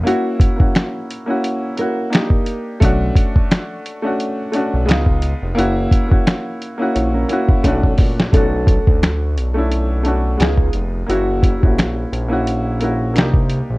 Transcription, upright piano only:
X:1
M:4/4
L:1/16
Q:"Swing 16ths" 1/4=87
K:F#phr
V:1 name="Upright piano"
[^A,CEF]2 z [A,CEF]3 z [A,CEF]2 z [A,CEF]2 [A,D^DG]3 z | [A,CDF]6 z [A,CDF]2 z [A,CDF]2 [^G,B,^D^E]3 z | [^A,CEF]2 z [A,CEF]3 z [A,CEF]2 z [A,CEF]2 [=A,CDF]3 z | [A,CDF]6 z [A,CDE]2 z [A,CDF]2 [^G,B,^D^E]3 z |
[^A,CEF]2 z [G,A,CEF]3 z [A,CEF]2 z [A,CEF]2 [_B,D_EG]3 z |]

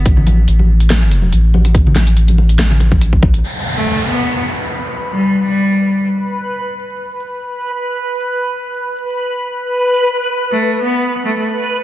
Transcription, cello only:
X:1
M:4/4
L:1/16
Q:"Swing 16ths" 1/4=142
K:Bphr
V:1 name="Cello"
z16 | z16 | z3 A,3 B,3 z6 z | G,3 G,6 z6 z |
z16 | z16 | z3 A,3 B,3 z A, A, z4 |]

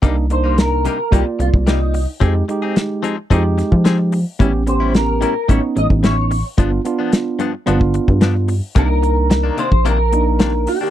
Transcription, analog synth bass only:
X:1
M:4/4
L:1/16
Q:1/4=110
K:Cm
V:1 name="Analog synth bass" clef=bass
C,,8 C,, z C,, C,,4- C,, | F,,2 z6 F,,3 F,4- F, | =A,,,8 A,,, z A,,, A,,,4- A,,, | G,,,2 z6 G,,,3 G,,4- G,, |
C,,6- C,, B,,,8- B,,, |]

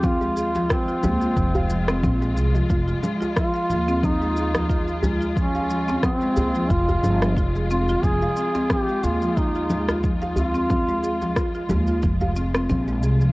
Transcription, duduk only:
X:1
M:4/4
L:1/8
Q:"Swing 16ths" 1/4=90
K:Fm
V:1 name="Duduk"
F2 C4 z2 | z2 F2 E3 z | D2 C2 F2 z F | A2 G F E2 z F- |
F3 z4 z |]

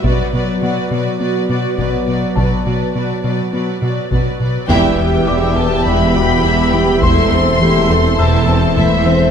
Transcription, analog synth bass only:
X:1
M:4/4
L:1/8
Q:1/4=103
K:Em
V:1 name="Analog synth bass" clef=bass
B,, B,, B,, B,, B, B,, B,, B,, | B,, B,, B,, B,, B, B,, B,, B,, | E,, E,, E, E,, E,, E,, E,, E, | E,, E,, E, E,, E,, E,, E,, E, |]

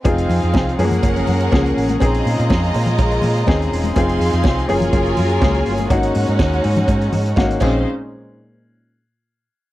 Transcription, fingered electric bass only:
X:1
M:4/4
L:1/16
Q:1/4=123
K:Bbm
V:1 name="Fingered electric bass" clef=bass
F,,,2 F,, F,, C,,2 G,,2 G,,,2 G,,2 D,,2 =A,,,2 | B,,,2 B,, B,, F,,2 B,,2 B,,,2 B,,2 E,,2 =E,,,2 | F,,,2 F,, F,, C,,2 G,,,2 G,,,2 G,,2 D,,2 =G,,,2 | A,,,2 A,, A,, E,,2 A,,2 A,,2 A,,2 A,,,2 B,,,2 |
z16 |]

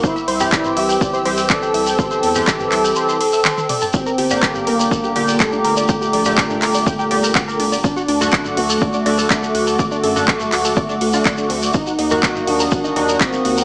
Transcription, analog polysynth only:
X:1
M:4/4
L:1/16
Q:1/4=123
K:Gm
V:1 name="Analog polysynth"
z3 [=E,CG]6- [E,CG] [E,CG]6- | [=E,CG]3 [E,CG]6- [E,CG] z6 | z3 [D,B,G]6- [D,B,G] [B,,D,G]6- | [B,,D,G]3 [B,,D,G]6- [B,,D,G] [B,,D,G]6 |
z3 [D,A,^F]6- [D,A,F] [D,A,F]6- | [D,A,^F]3 [D,A,F]6- [D,A,F] z [D,A,F]4- [D,A,F] | z3 [E,B,_G]6- [E,B,G] [E,B,G]6 |]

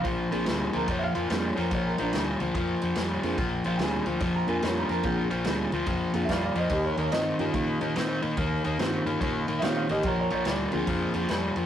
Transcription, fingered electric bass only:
X:1
M:4/4
L:1/8
Q:"Swing" 1/4=144
K:Bbmix
V:1 name="Fingered electric bass" clef=bass
B,,, B,,, D,, D,, F,, F,, F,, F,, | B,,, B,,, D,, D,, F,, F,, F,, F,, | B,,, B,,, D,, D,, F,, F,, F,, F,, | B,,, B,,, D,, D,, F,, F,, F,, F,, |
E,, E,, z G,, B,, B,, B,, B,, | E,, E,, G,, G,, B,, B,, B,, =A,,, | B,,, B,,, D,, D,, F,, F,, F,, F,, |]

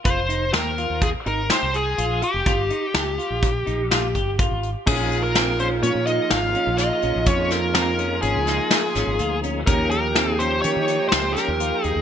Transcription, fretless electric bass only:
X:1
M:5/4
L:1/16
Q:1/4=125
K:Bbdor
V:1 name="Fretless electric bass" clef=bass
F,,,4 E,,3 E,,2 z A,,,2 z C,,3 B,,,2 z F,,, | G,,,2 z2 D,,2 z B,,,3 B,,,4 G,,,3 A,,,2 z | B,,,8 B,, B,,2 z A,,,2 z B,,,2 z B,,, B,,, | F,,8 A,,, D,,2 z3 A,,, A,,, =D,,4 |
E,,8 E, E,2 z D,,2 z E,,2 z E,, E,, |]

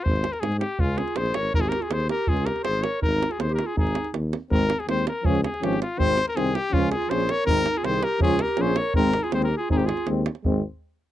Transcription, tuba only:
X:1
M:2/4
L:1/8
Q:1/4=162
K:Ab
V:1 name="Tuba" clef=bass
A,,,2 A,,2 | D,,2 B,,, A,,, | A,,,2 E,,2 | D,,2 A,,,2 |
A,,,2 E,,2 | A,,,2 E,,2 | A,,,2 E,,2 | D,,2 A,,,2 |
A,,,2 C,,2 | D,,2 B,,,2 | A,,,2 C,,2 | D,,2 B,,,2 |
A,,,2 E,,2 | A,,,2 E,,2 | A,,, z3 |]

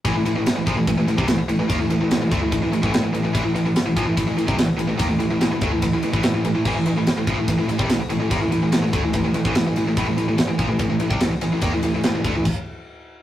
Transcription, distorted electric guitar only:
X:1
M:4/4
L:1/16
Q:1/4=145
K:Am
V:1 name="Distorted electric guitar" clef=bass
[A,,E,] [A,,E,] [A,,E,] [A,,E,] z [A,,E,] [_B,,F,] [A,,E,] [A,,E,] [A,,E,] [A,,E,] [C,G,] [A,,E,] z [A,,E,] [A,,E,] | [^D,_B,] [A,,E,] [A,,E,] [A,,E,] [A,,E,] [A,,E,] [=D,A,] [A,,E,] [A,,E,] [A,,E,] [A,,E,] [A,,E,] [A,,E,] [A,,E,] [A,,E,] [A,,E,] | [A,,E,] [A,,E,] [A,,E,] [A,,E,] z [A,,E,] [_B,,F,] [A,,E,] [A,,E,] [A,,E,] [A,,E,] [C,G,] [A,,E,] z [A,,E,] [A,,E,] | [^D,_B,] [A,,E,] [A,,E,] [A,,E,] [A,,E,] [A,,E,] [=D,A,] [A,,E,] [A,,E,] [A,,E,] [A,,E,] [A,,E,] [A,,E,] [A,,E,] [A,,E,] [A,,E,] |
[A,,E,] [A,,E,] [A,,E,] [A,,E,] z [A,,E,] [_B,,F,] [A,,E,] [A,,E,] [A,,E,] [A,,E,] [C,G,] [A,,E,] z [A,,E,] [A,,E,] | [^D,_B,] [A,,E,] [A,,E,] [A,,E,] [A,,E,] [A,,E,] [=D,A,] [A,,E,] [A,,E,] [A,,E,] [A,,E,] [A,,E,] [A,,E,] [A,,E,] [A,,E,] [A,,E,] | [A,,E,] [A,,E,] [A,,E,] [A,,E,] z [A,,E,] [_B,,F,] [A,,E,] [A,,E,] [A,,E,] [A,,E,] [C,G,] [A,,E,] z [A,,E,] [A,,E,] | [^D,_B,] [A,,E,] [A,,E,] [A,,E,] [A,,E,] [A,,E,] [=D,A,] [A,,E,] z8 |]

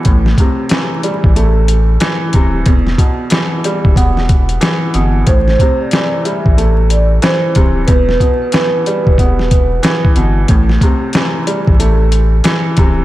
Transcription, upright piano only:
X:1
M:4/4
L:1/8
Q:"Swing 16ths" 1/4=92
K:Ador
V:1 name="Upright piano" clef=bass
A,, C, E, G, A,2 E, C, | E,, B,, E, G, B,2 E, B,, | A,, C, E, G, A,2 E, C, | E,, B,, E, G, B,2 E, B,, |
A,, C, E, G, A,2 E, C, |]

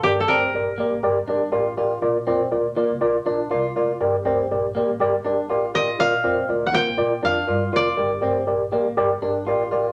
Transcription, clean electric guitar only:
X:1
M:4/4
L:1/8
Q:1/4=121
K:Gm
V:1 name="Clean electric guitar"
z C z B, z D F F | z C z B, z D F F | z C z B, z D F F | z C z B, z D F F |
z C z B, z D F F |]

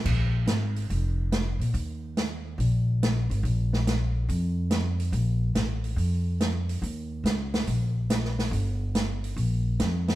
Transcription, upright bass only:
X:1
M:4/4
L:1/8
Q:"Swing" 1/4=142
K:Eb
V:1 name="Upright bass" clef=bass
B,,,2 A,,,2 F,,,3 B,, | E,,4 B,,,3 A,,, | B,,,4 F,,4 | B,,,2 =A,,,2 F,,4 |
E,,2 _D,,2 B,,,4 | G,,,4 B,,,2 F,,2 |]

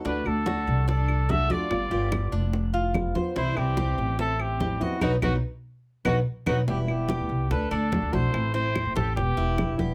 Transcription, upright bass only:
X:1
M:4/4
L:1/16
Q:1/4=145
K:Em
V:1 name="Upright bass" clef=bass
D,,2 D,,4 C,,8 z2 | G,,,2 G,,,4 =F,,,8 z2 | C,,2 C,,4 A,,,8 z2 | B,,,2 B,,,2 z6 B,,,2 z2 B,,,2 |
E,,,4- E,,, D,, C,,2 D,,2 D,,3 D,, B,,,2 | A,,,4- A,,, F,,, A,,,2 E,,,2 E,,,3 E,,, E,,,2 |]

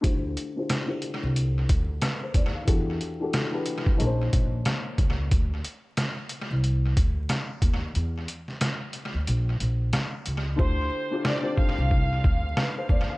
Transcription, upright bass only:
X:1
M:4/4
L:1/16
Q:"Swing 16ths" 1/4=91
K:C
V:1 name="Upright bass" clef=bass
D,,2 z4 z C,,3 D,,2 z2 _E,,2 | E,,2 z4 z D,, _B,,,2 B,,,2 z2 _D,,2 | D,,2 z4 z C,,3 D,,2 z2 _E,,2 | E,,2 z4 z D,, _B,,,2 B,,,2 z2 _D,,2 |
D,,2 z4 z C,,3 D,,2 z2 _E,,2 |]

